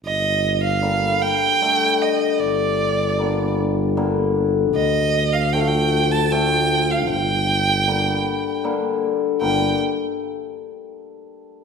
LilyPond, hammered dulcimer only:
\new Staff \with { instrumentName = "Hammered dulcimer" } { \clef bass \time 3/4 \key g \minor \tempo 4 = 77 r4 <d g bes>8 r8 <d g a>8 r8 | r4 <d g bes>8 r8 <d g bes>8 r8 | r4 <d f a>8 r8 <d f a>8 r8 | r4 <d g bes>8 r8 <d g bes>8 r8 |
<d g bes>8 r2 r8 | }